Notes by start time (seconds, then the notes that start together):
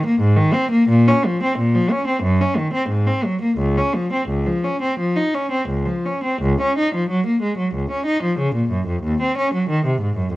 0.06 A#3
0.21 G#2
0.36 D#3
0.53 C4
0.71 A#3
0.89 A#2
1.07 C#4
1.26 F3
1.43 C4
1.58 A#2
1.75 F3
1.91 C#4
2.07 C4
2.23 F#2
2.41 C#4
2.57 D#3
2.73 C4
2.89 G#2
3.07 C4
3.25 F#3
3.42 A#3
3.58 C#2
3.77 C#4
3.94 F3
4.13 C4
4.29 C#2
4.46 F3
4.64 C#4
4.82 C4
4.99 F3
5.16 D#4
5.34 C#4
5.51 C4
5.69 C#2
5.86 F3
6.06 C#4
6.24 C4
6.42 C#2
6.61 C#4
6.78 D#4
6.95 F3
7.10 F#3
7.26 A#3
7.42 G#3
7.58 F#3
7.75 C#2
7.91 C#4
8.06 D#4
8.23 F3
8.39 C#3
8.55 A#2
8.71 F#2
8.88 F2
9.03 D#2
9.21 C4
9.38 C#4
9.54 F#3
9.69 D#3
9.86 C3
10.01 G#2
10.16 F#2
10.33 F2